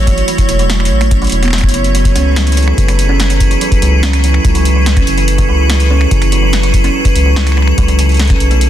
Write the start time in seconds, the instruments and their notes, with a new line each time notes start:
Already playing: analog synth bass A1, ambient pad A3 E4 F#4 C#5
0.07 kalimba A3, kick, closed hi-hat
0.18 closed hi-hat
0.28 kalimba E3, closed hi-hat
0.38 kick, closed hi-hat
0.49 analog synth bass E1, kalimba F#4, closed hi-hat
0.59 kalimba F#3, closed hi-hat
0.70 finger snap, snare, closed hi-hat
0.80 kalimba F#3, finger snap
0.85 closed hi-hat
0.90 analog synth bass A1
1.01 kalimba A3, finger snap, closed hi-hat
1.11 kalimba C#4, kick, closed hi-hat
1.22 kalimba F#3, closed hi-hat
1.24 closed hi-hat
1.27 closed hi-hat
1.29 analog synth bass E1, closed hi-hat
1.32 closed hi-hat
1.43 kalimba B3, finger snap, closed hi-hat
1.45 finger snap
1.48 finger snap
1.50 kalimba F#3, finger snap
1.53 finger snap, snare, closed hi-hat
1.56 finger snap
1.58 finger snap, closed hi-hat
1.61 finger snap, kick
1.63 finger snap
1.69 closed hi-hat
1.74 analog synth bass F#1, kalimba F#3, ambient pad F#3 G#4 A4 B4, closed hi-hat
1.84 closed hi-hat
1.95 kalimba F#3, closed hi-hat
2.05 kick, closed hi-hat
2.15 analog synth bass C#2, kalimba C#4, closed hi-hat
2.36 kalimba E3, finger snap, snare, closed hi-hat
2.47 closed hi-hat
2.52 closed hi-hat
2.57 kalimba F#4, closed hi-hat
2.62 closed hi-hat
2.67 kalimba F#3, finger snap
2.78 analog synth bass F#1, kick, closed hi-hat
2.88 kalimba F#3, finger snap, closed hi-hat
2.99 closed hi-hat
3.09 kalimba C#4
3.20 snare, closed hi-hat
3.30 kalimba E3, closed hi-hat
3.40 kick, closed hi-hat
3.51 kalimba F#4, closed hi-hat
3.61 kalimba F#3, closed hi-hat
3.72 kick, closed hi-hat
3.82 analog synth bass C#2, kalimba F#3, closed hi-hat
4.03 kalimba C#4, finger snap, snare, closed hi-hat
4.13 finger snap, closed hi-hat
4.24 kalimba E3, closed hi-hat
4.34 finger snap
4.45 analog synth bass C#2, kalimba F#4, kick, closed hi-hat
4.55 kalimba F#3, closed hi-hat
4.65 closed hi-hat
4.76 kalimba F#3
4.86 snare, closed hi-hat
4.97 kalimba C#4, finger snap, kick, closed hi-hat
5.07 analog synth bass F#1, closed hi-hat
5.18 kalimba E3, closed hi-hat
5.28 closed hi-hat
5.38 kalimba F#4, kick, closed hi-hat
5.49 analog synth bass C#2, kalimba F#3
5.70 kalimba F#3, snare, closed hi-hat
5.80 closed hi-hat
5.90 kalimba C#4
6.01 finger snap
6.11 analog synth bass F#1, kalimba E3, kick, closed hi-hat
6.22 finger snap, closed hi-hat
6.32 kalimba F#4, closed hi-hat
6.42 kalimba F#3
6.53 snare, closed hi-hat
6.63 kalimba F#3, closed hi-hat
6.74 kick, closed hi-hat
6.84 kalimba C#4, closed hi-hat
7.05 kalimba E3, kick, closed hi-hat
7.15 analog synth bass C#2, closed hi-hat
7.26 kalimba F#4
7.36 kalimba F#3, finger snap, snare
7.47 finger snap, closed hi-hat
7.52 finger snap
7.57 kalimba F#3, finger snap
7.62 finger snap
7.67 finger snap
7.78 analog synth bass C#2, kalimba F#3, kick, closed hi-hat
7.88 kalimba F#3, closed hi-hat
7.99 kalimba C#3, closed hi-hat
8.09 closed hi-hat
8.12 closed hi-hat
8.14 closed hi-hat
8.17 snare, closed hi-hat
8.20 kalimba F#3, closed hi-hat
8.22 closed hi-hat
8.25 closed hi-hat
8.27 kalimba C#4, finger snap, kick, closed hi-hat
8.30 closed hi-hat
8.40 analog synth bass B1, ambient pad B3 F#4 D6, closed hi-hat
8.51 kalimba A3, closed hi-hat
8.61 closed hi-hat